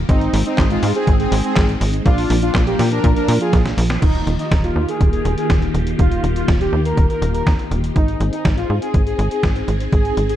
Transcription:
0.09 G#1 G#3 C4 D#4, kick, closed hi-hat
0.21 closed hi-hat
0.33 G#1, open hi-hat
0.46 C4 D#4, closed hi-hat
0.58 G#1, kick, snare, clap, closed hi-hat
0.71 G#3 F4, closed hi-hat
0.83 G#2, open hi-hat
0.95 C4 G#4, closed hi-hat
1.07 G#1, kick, closed hi-hat
1.20 C4 G#4, closed hi-hat
1.32 G#1, open hi-hat
1.44 C4 G#4, closed hi-hat
1.56 G#1, kick, snare, clap, closed hi-hat
1.69 closed hi-hat
1.81 G#1, open hi-hat
1.94 closed hi-hat
2.05 A#1 F3 A#3 D4 F4, kick, closed hi-hat
2.18 open hi-hat
2.30 A#1, open hi-hat
2.42 D4 F4, closed hi-hat
2.55 A#1, kick, snare, clap, closed hi-hat
2.67 A#3 G4, closed hi-hat
2.79 A#2, snare, open hi-hat
2.92 D4 A#4, closed hi-hat
3.04 A#2, kick, closed hi-hat
3.16 D4 A#4, closed hi-hat
3.28 A#2, open hi-hat
3.41 F4 G#4, closed hi-hat
3.53 A#1, kick, snare, closed hi-hat
3.66 snare, closed hi-hat
3.78 A#1, open hi-hat
3.90 snare
4.02 D#1 D#3 A#3 D#4 F4 G4, kick, closed hi-hat, crash
4.15 closed hi-hat
4.27 D#1, closed hi-hat
4.39 D#4, closed hi-hat
4.51 D#1, kick, snare, closed hi-hat
4.64 F4, closed hi-hat
4.76 D#2
4.89 G#4, closed hi-hat
5.01 D#1, kick, closed hi-hat
5.13 G#4, closed hi-hat
5.25 D#1, closed hi-hat
5.38 G#4, closed hi-hat
5.50 D#1, kick, snare, closed hi-hat
5.62 closed hi-hat
5.74 D#1, closed hi-hat
5.87 closed hi-hat
5.99 D#1 F4, kick, closed hi-hat
6.12 closed hi-hat
6.24 D#1, closed hi-hat
6.36 F4, closed hi-hat
6.48 D#1, kick, snare, closed hi-hat
6.61 G4, closed hi-hat
6.73 D#2
6.85 A#4, closed hi-hat
6.97 D#1, kick, closed hi-hat
7.10 A#4, closed hi-hat
7.22 D#1, closed hi-hat
7.34 A#4, closed hi-hat
7.47 D#2, kick, snare, closed hi-hat
7.59 closed hi-hat
7.71 D#1, closed hi-hat
7.84 closed hi-hat
7.96 G#1 C4 D#4 G#4, kick, closed hi-hat
8.08 closed hi-hat
8.20 G#1, closed hi-hat
8.33 D#4, closed hi-hat
8.45 G#1, kick, snare, closed hi-hat
8.57 F4, closed hi-hat
8.70 G#2
8.82 G#4, closed hi-hat
8.94 G#1, kick, closed hi-hat
9.06 G#4, closed hi-hat
9.19 G#1, closed hi-hat
9.31 G#4, closed hi-hat
9.43 G#1, kick, snare, closed hi-hat
9.56 closed hi-hat
9.68 G#1, closed hi-hat
9.80 closed hi-hat
9.92 G#1 G#4, kick, closed hi-hat
10.05 closed hi-hat
10.17 G#1, closed hi-hat
10.29 G#4, closed hi-hat

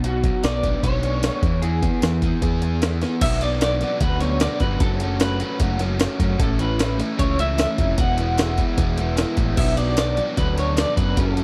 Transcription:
Already playing: B1
0.04 B2 F#4, closed hi-hat
0.24 F#3, kick, closed hi-hat
0.44 B1 B3 D5, snare, closed hi-hat, tambourine
0.63 D4, kick, closed hi-hat
0.83 B1 C#5, kick, closed hi-hat
1.03 D4, closed hi-hat
1.23 B3, snare, closed hi-hat, tambourine
1.43 E2 E3, kick, closed hi-hat
1.62 E3 G#4, closed hi-hat
1.83 B3, kick, closed hi-hat
2.02 E2 E3, snare, closed hi-hat, tambourine
2.22 B3, kick, closed hi-hat
2.42 E2 G#4, kick, closed hi-hat
2.62 B3, closed hi-hat
2.82 E3, snare, closed hi-hat, tambourine
3.02 B3, snare, closed hi-hat
3.21 B1 B2 F#3 B3 D4 F#4 E5, kick, closed hi-hat, crash
3.41 B2 F#3 B3 D4 F#4 D5, closed hi-hat
3.61 B2 F#3 B3 D4 F#4 D5, snare, clap, closed hi-hat, tambourine
3.81 B2 F#3 B3 D4 F#4, snare, closed hi-hat
4.00 D2 B2 F#3 B3 D4 F#4 B4, kick, closed hi-hat
4.21 B2 F#3 B3 D4 F#4 C#5, snare, closed hi-hat
4.40 B2 F#3 B3 D4 F#4 D5, snare, clap, closed hi-hat, tambourine
4.60 G1 B2 F#3 B3 D4 F#4 B4, kick, closed hi-hat
4.80 F#1 F#3 A3 C#4 F#4 A4, kick, closed hi-hat
5.00 F#3 A3 C#4 F#4, closed hi-hat
5.20 F#3 A3 C#4 F#4 B4, snare, clap, closed hi-hat, tambourine
5.40 F#3 A3 C#4 F#4, closed hi-hat
5.60 F#1 F#3 A3 C#4 F#4, kick, closed hi-hat
5.79 F#3 A3 C#4 F#4, snare, closed hi-hat
5.99 F#3 A3 C#4 F#4, snare, clap, closed hi-hat, tambourine
6.19 F#2 F#3 A3 C#4 F#4, kick, closed hi-hat
6.39 A1 A2 E3 A3 C#4 E4 A4, kick, closed hi-hat
6.59 A2 E3 A3 C#4 E4 B4, closed hi-hat
6.78 A2 E3 A3 C#4 E4, snare, clap, closed hi-hat, tambourine
6.98 A2 E3 A3 C#4 E4, snare, closed hi-hat
7.17 C#2 A2 E3 A3 C#4 E4 C#5, kick, closed hi-hat
7.38 A2 E3 A3 C#4 E4 E5, closed hi-hat
7.58 A2 E3 A3 C#4 E4, snare, clap, closed hi-hat, tambourine
7.78 F1 A2 E3 A3 C#4 E4, kick, closed hi-hat
7.98 E1 E3 G#3 B3 E4 F#5, kick, closed hi-hat
8.18 E3 G#3 B3 E4, closed hi-hat
8.38 E3 G#3 B3 E4, snare, clap, closed hi-hat, tambourine
8.58 E3 G#3 B3 E4, kick, closed hi-hat
8.77 E1 E3 G#3 B3 E4, kick, closed hi-hat
8.98 E3 G#3 B3 E4, closed hi-hat
9.17 E3 G#3 B3 E4, snare, clap, closed hi-hat, tambourine
9.37 A1 E3 G#3 B3 E4, kick, closed hi-hat
9.56 B1 B2 F#3 B3 D4 E5, kick, crash
9.77 B2 F#3 B3 D4 D5, closed hi-hat
9.97 B2 F#3 B3 D4 D5, snare, clap, closed hi-hat, tambourine
10.17 B2 F#3 B3 D4, closed hi-hat
10.36 D2 B2 F#3 B3 D4 B4, kick, closed hi-hat
10.57 B2 F#3 B3 D4 C#5, snare, closed hi-hat
10.77 B2 F#3 B3 D4 D5, snare, clap, closed hi-hat, tambourine
10.97 F#2 B2 F#3 B3 D4 B4, kick, closed hi-hat
11.16 F#1 F#2 C#3 F#3 A3 C#4 A4, kick, closed hi-hat
11.36 F#2 C#3 F#3 A3 C#4, closed hi-hat

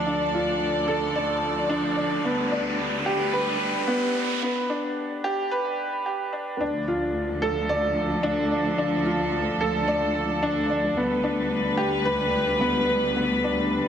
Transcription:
Already playing: D2 F3 D4 F4 A4 D5, riser
0.07 D4
0.34 F4
0.88 A4
1.16 D5
1.69 D4
1.97 D5
2.24 D2 G3 B3
2.52 D4
2.72 B4
3.06 G4
3.33 B4
3.88 B3
4.16 B4
4.42 B3
4.70 D4
5.24 G4
5.51 B4
6.06 G4
6.33 D4
6.60 D2 F3 D4
6.88 F4
7.33 A4
7.42 A4
7.69 D5
8.23 D4
8.51 D5
8.78 D4
9.05 F4
9.61 A4
9.88 D5
10.43 D4
10.70 D5
10.97 D2 G3 B3
11.07 B4
11.24 D4
11.77 G4
12.05 B4
12.61 B3
12.88 B4
13.16 B3
13.44 D4

